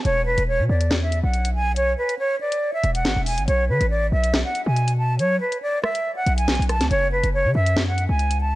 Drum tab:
HH |x--------x-----------x--------x-----x--x--------|x--------x-----------x--------x--x--x-----o--x--|x--------x-----------x--------x-----x--x--------|x--------x-----------x--------x--x--x-x-x-x--x--|
SD |------------------------o-----------------------|------------------------------------o-----------|------------------------o-----------------------|------------------r-----------------o-----r--o--|

HH |x--------x-----------x--------x-----x--x--------|
SD |------------------------o-----------------------|